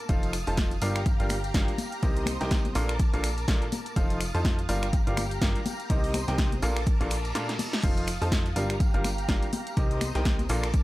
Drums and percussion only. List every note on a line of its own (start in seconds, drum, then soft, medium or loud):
0.09 kick loud
0.09 closed hi-hat medium
0.09 tambourine soft
0.23 closed hi-hat soft
0.23 tambourine soft
0.33 finger snap medium
0.33 open hi-hat loud
0.33 tambourine medium
0.46 open hi-hat medium
0.46 tambourine soft
0.57 kick loud
0.57 snare loud
0.57 closed hi-hat medium
0.57 tambourine medium
0.71 closed hi-hat soft
0.71 tambourine soft
0.81 open hi-hat loud
0.81 tambourine loud
0.96 finger snap medium
0.96 closed hi-hat soft
0.96 tambourine soft
1.06 kick loud
1.06 closed hi-hat medium
1.06 tambourine medium
1.20 closed hi-hat soft
1.20 tambourine soft
1.29 finger snap medium
1.29 open hi-hat loud
1.29 tambourine loud
1.29 high conga medium
1.44 closed hi-hat soft
1.44 tambourine soft
1.54 kick loud
1.54 snare loud
1.54 closed hi-hat medium
1.54 tambourine soft
1.68 closed hi-hat soft
1.68 tambourine soft
1.78 open hi-hat loud
1.78 tambourine medium
1.78 high conga medium
1.92 closed hi-hat soft
1.92 tambourine soft
2.02 kick loud
2.02 closed hi-hat medium
2.02 tambourine medium
2.16 closed hi-hat soft
2.16 tambourine soft
2.26 finger snap medium
2.26 open hi-hat loud
2.26 tambourine loud
2.26 high conga medium
2.41 snare soft
2.41 closed hi-hat soft
2.41 tambourine soft
2.51 kick loud
2.51 snare loud
2.51 closed hi-hat medium
2.51 tambourine medium
2.65 closed hi-hat soft
2.65 tambourine soft
2.65 high conga medium
2.75 open hi-hat loud
2.75 tambourine medium
2.89 finger snap medium
2.89 closed hi-hat soft
2.89 tambourine soft
2.99 kick loud
2.99 closed hi-hat medium
2.99 tambourine medium
3.14 closed hi-hat soft
3.14 tambourine soft
3.24 finger snap medium
3.24 open hi-hat loud
3.24 tambourine medium
3.38 closed hi-hat soft
3.38 tambourine soft
3.48 kick loud
3.48 snare loud
3.48 closed hi-hat medium
3.48 tambourine soft
3.62 closed hi-hat soft
3.62 tambourine soft
3.72 open hi-hat loud
3.72 tambourine loud
3.72 high conga medium
3.86 closed hi-hat soft
3.86 tambourine soft
3.96 kick loud
3.96 closed hi-hat medium
3.96 tambourine medium
4.10 closed hi-hat soft
4.10 tambourine soft
4.21 finger snap medium
4.21 open hi-hat loud
4.21 tambourine medium
4.35 open hi-hat medium
4.35 tambourine soft
4.45 kick loud
4.45 snare loud
4.45 closed hi-hat medium
4.45 tambourine medium
4.59 closed hi-hat soft
4.59 tambourine soft
4.69 open hi-hat loud
4.69 tambourine medium
4.82 finger snap medium
4.82 closed hi-hat soft
4.82 tambourine soft
4.93 kick loud
4.93 closed hi-hat medium
4.93 tambourine medium
5.07 closed hi-hat soft
5.07 tambourine soft
5.17 finger snap medium
5.17 open hi-hat loud
5.17 tambourine medium
5.17 high conga medium
5.31 closed hi-hat soft
5.31 tambourine soft
5.41 kick loud
5.41 snare loud
5.41 closed hi-hat medium
5.56 closed hi-hat soft
5.56 tambourine soft
5.66 open hi-hat loud
5.66 tambourine medium
5.66 high conga medium
5.80 closed hi-hat soft
5.80 tambourine soft
5.90 kick loud
5.90 closed hi-hat medium
5.90 tambourine soft
6.04 open hi-hat medium
6.04 tambourine soft
6.14 finger snap medium
6.14 open hi-hat loud
6.14 tambourine loud
6.14 high conga medium
6.28 snare soft
6.28 closed hi-hat soft
6.28 tambourine soft
6.38 kick loud
6.38 snare loud
6.38 closed hi-hat medium
6.38 tambourine soft
6.52 closed hi-hat soft
6.52 tambourine soft
6.52 high conga medium
6.62 open hi-hat loud
6.62 tambourine medium
6.76 finger snap medium
6.76 closed hi-hat soft
6.76 tambourine soft
6.86 kick loud
6.86 closed hi-hat medium
6.86 tambourine medium
7.01 closed hi-hat soft
7.01 tambourine soft
7.11 finger snap medium
7.11 open hi-hat loud
7.11 tambourine medium
7.25 closed hi-hat soft
7.25 tambourine soft
7.35 snare medium
7.35 closed hi-hat medium
7.35 tambourine soft
7.49 snare medium
7.49 closed hi-hat soft
7.49 tambourine soft
7.59 open hi-hat loud
7.59 tambourine medium
7.59 high conga medium
7.73 snare medium
7.73 closed hi-hat soft
7.73 tambourine soft
7.83 kick loud
7.83 closed hi-hat medium
7.83 crash medium
7.83 tambourine medium
7.97 closed hi-hat soft
7.97 tambourine soft
8.07 finger snap medium
8.07 open hi-hat loud
8.07 tambourine medium
8.22 open hi-hat medium
8.22 tambourine soft
8.32 kick loud
8.32 snare loud
8.32 closed hi-hat medium
8.32 tambourine medium
8.46 closed hi-hat soft
8.46 tambourine soft
8.56 open hi-hat loud
8.56 tambourine loud
8.70 finger snap medium
8.70 closed hi-hat soft
8.70 tambourine soft
8.80 kick loud
8.80 closed hi-hat medium
8.80 tambourine medium
8.94 closed hi-hat soft
8.94 tambourine soft
9.04 finger snap medium
9.04 open hi-hat loud
9.04 tambourine medium
9.04 high conga medium
9.18 closed hi-hat soft
9.18 tambourine soft
9.29 kick loud
9.29 snare loud
9.29 closed hi-hat medium
9.29 tambourine soft
9.42 closed hi-hat soft
9.42 tambourine soft
9.53 open hi-hat loud
9.53 tambourine medium
9.53 high conga loud
9.67 closed hi-hat soft
9.67 tambourine soft
9.77 kick loud
9.77 closed hi-hat medium
9.77 tambourine medium
9.91 closed hi-hat soft
9.91 tambourine soft
10.01 finger snap medium
10.01 open hi-hat loud
10.01 tambourine medium
10.01 high conga loud
10.15 snare soft
10.15 closed hi-hat soft
10.15 tambourine soft
10.25 kick loud
10.25 snare loud
10.25 closed hi-hat medium
10.25 tambourine medium
10.39 closed hi-hat soft
10.39 tambourine soft
10.39 high conga medium
10.49 open hi-hat loud
10.49 tambourine medium
10.63 finger snap medium
10.63 closed hi-hat soft
10.63 tambourine soft
10.74 kick loud
10.74 closed hi-hat medium
10.74 tambourine medium